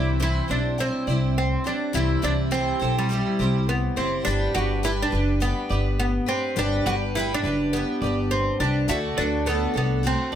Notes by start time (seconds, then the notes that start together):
Already playing: C2 C3 E3 G3 C4 E4 C5
0.20 C3 E3 G3 C4 E4 C5
0.48 B1 G3 C4 D4 E4 C5
0.78 G3 C4 E4 C5
1.07 C2 G3 C4 E4 C5 D5
1.38 C4
1.64 G3 C4 D4 E4 C5
1.93 C2 C3 E3 G3 C4 E4 C5
2.22 C2 C3 E3 G3 C4 D4 E4 C5 D5
2.51 C3 E3 G3 C4 E4 C5
2.79 B1 G3 C4 E4 A4 C5
2.98 G3
3.09 G3 C4 E4 C5
3.39 C2 G3 C4 E4 G4 C5
3.69 B3
3.96 F#1 G3 C4 E4 C5
4.24 G1 G3 B3 D4 G4
4.28 B4
4.55 G1 G3 D4 F#4 G4 B4 D5
4.83 G3 D4 E4 G4 B4
5.03 D4
5.11 F#1 D4 G4 B4
5.40 G3 B3 D4 G4 B4
5.69 G1 D4 G4 B4 D5
5.99 B3
6.26 C4 D4 G4 B4
6.55 G1 G3 B3 D4 G4 B4
6.86 G1 G3 D4 F#4 G4 B4 D5
7.15 G3 D4 E4 G4 B4
7.34 D4
7.43 F#1 D4 G4 B4
7.73 G3 B3 D4 G4 B4
8.02 G1 G3 B3 D4 G4 B4 D5
8.31 C4
8.60 C2 D4 G4 B4
8.87 D2 D3 A3 D4 E4 F#4 A4
8.91 D5
9.17 D2 D3 A3 D4 F#4 A4 B4
9.46 D3 A3 B3 D4 F#4 A4
9.74 C2 B3 D4 F#4 A4
10.03 A3 C4 D4 F#4 A4
10.32 A4